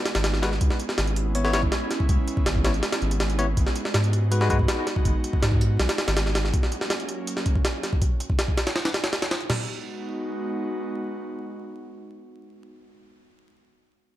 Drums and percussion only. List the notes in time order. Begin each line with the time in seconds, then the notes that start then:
0.06 snare, closed hi-hat
0.15 snare, closed hi-hat
0.24 snare, closed hi-hat
0.34 snare
0.43 snare, closed hi-hat
0.52 snare
0.61 kick, closed hi-hat
0.70 snare
0.80 closed hi-hat
0.89 snare
0.98 snare, closed hi-hat
1.07 closed hi-hat
1.16 closed hi-hat
1.35 closed hi-hat
1.45 snare
1.53 snare, closed hi-hat
1.63 kick
1.72 snare, closed hi-hat
1.91 snare, closed hi-hat
2.00 kick
2.09 kick, closed hi-hat
2.28 closed hi-hat
2.37 kick
2.46 snare, closed hi-hat
2.55 kick
2.64 snare, closed hi-hat
2.74 closed hi-hat
2.83 snare, closed hi-hat
2.92 snare, closed hi-hat
3.02 closed hi-hat
3.11 closed hi-hat
3.20 snare, closed hi-hat
3.30 closed hi-hat
3.39 closed hi-hat
3.57 kick, closed hi-hat
3.67 snare
3.76 closed hi-hat
3.85 snare
3.94 snare, closed hi-hat
4.04 closed hi-hat
4.13 closed hi-hat
4.32 closed hi-hat
4.41 snare
4.50 kick, closed hi-hat
4.59 kick
4.68 snare, closed hi-hat
4.87 snare, closed hi-hat
4.96 kick
5.05 kick, closed hi-hat
5.24 closed hi-hat
5.33 kick
5.43 snare, closed hi-hat
5.52 kick
5.61 closed hi-hat
5.80 snare, closed hi-hat
5.89 snare, closed hi-hat
5.98 snare, closed hi-hat
6.08 snare, closed hi-hat
6.17 snare, closed hi-hat
6.26 snare
6.35 snare, closed hi-hat
6.45 snare
6.54 kick, closed hi-hat
6.63 snare
6.72 closed hi-hat
6.81 snare
6.90 snare, closed hi-hat
7.00 closed hi-hat
7.09 closed hi-hat
7.27 closed hi-hat
7.37 snare
7.46 kick, closed hi-hat
7.56 kick
7.65 snare, closed hi-hat
7.83 snare, closed hi-hat
7.93 kick
8.02 kick, closed hi-hat
8.20 closed hi-hat
8.30 kick
8.39 snare, closed hi-hat
8.48 kick
8.57 snare, closed hi-hat
8.67 snare, closed hi-hat
8.76 snare, closed hi-hat
8.85 snare, closed hi-hat
8.94 snare, closed hi-hat
9.04 snare, closed hi-hat
9.13 snare, closed hi-hat
9.22 snare, closed hi-hat
9.31 snare, closed hi-hat
9.40 closed hi-hat
9.50 snare, floor tom, crash